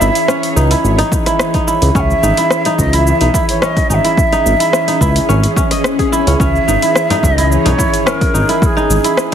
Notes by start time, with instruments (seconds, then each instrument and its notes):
Already playing: synth drone E3 C#4 G#4 C#5, kora C#4, ney E5
0.01 analog synth bass G#1, kora E4, shaker
0.15 open hi-hat, shaker
0.28 kora C#4, cross-stick, shaker
0.43 open hi-hat, shaker
0.56 analog synth bass C#2, kora D#4, shaker
0.71 kora E4, open hi-hat, shaker
0.84 analog synth bass G#1, shaker
0.98 kora D#4, open hi-hat, shaker
1.12 kick, shaker
1.26 kora E4, cross-stick, open hi-hat, shaker
1.39 cross-stick, shaker
1.54 kora D#4, kick, open hi-hat, shaker
1.67 kora E4, shaker
1.82 analog synth bass C#2, open hi-hat, shaker
1.95 analog synth bass C#2, kora C#4, ney G#5, kick, shaker
2.00 ney E5
2.10 shaker
2.23 analog synth bass G#1, kora D#4, shaker
2.37 kora E4, open hi-hat, shaker
2.50 cross-stick, shaker
2.65 kora D#4, open hi-hat, shaker
2.78 analog synth bass C#2, ney D#5, kick, shaker
2.93 kora E4, ney E5, open hi-hat, shaker
3.07 shaker
3.21 analog synth bass B1, kora D#4, open hi-hat, shaker
3.34 kora E4, kick, shaker
3.49 ney C#5, open hi-hat, shaker
3.62 kora C#4, ney D#5, cross-stick, shaker
3.77 kick, open hi-hat, shaker
3.90 analog synth bass G#1, kora D#4, ney G#5, shaker
3.94 ney E5
4.05 kora E4, open hi-hat, shaker
4.17 kick, shaker
4.32 kora D#4, open hi-hat, shaker
4.45 analog synth bass G#1, shaker
4.60 kora E4, open hi-hat, shaker
4.73 cross-stick, shaker
4.88 kora D#4, open hi-hat, shaker
5.01 analog synth bass C#2, kora E4, kick, shaker
5.16 open hi-hat, shaker
5.29 analog synth bass G#1, kora C#4, swell, shaker
5.43 open hi-hat, shaker
5.56 kora C#4, kick, shaker
5.71 kora D#5, cross-stick, open hi-hat, shaker
5.84 cross-stick, shaker
5.99 kora G#4, kick, open hi-hat, shaker
6.12 kora E4, shaker
6.27 analog synth bass C#2, kora C#4, open hi-hat, shaker
6.40 analog synth bass C#2, kora C#4, ney E5, kick, shaker
6.56 shaker
6.68 analog synth bass G#1, kora D#4, shaker
6.82 kora E4, open hi-hat, shaker
6.96 cross-stick, shaker
7.10 kora D#4, open hi-hat, frame drum, shaker
7.23 analog synth bass C#2, ney D#5, kick, frame drum, shaker
7.38 kora E4, open hi-hat, shaker
7.51 ney C#5, shaker
7.65 analog synth bass B1, kora D#4, open hi-hat, frame drum, shaker
7.78 kora E4, kick, shaker
7.94 open hi-hat, shaker
8.06 kora C#4, ney A#4, cross-stick, shaker
8.21 kick, open hi-hat, shaker
8.34 analog synth bass G#1, kora D#4, shaker
8.49 kora E4, open hi-hat, shaker
8.62 ney G#4 A#4, kick, shaker
8.77 kora D#4, shaker
8.90 analog synth bass G#1, shaker
9.04 kora E4, open hi-hat, shaker
9.17 cross-stick, shaker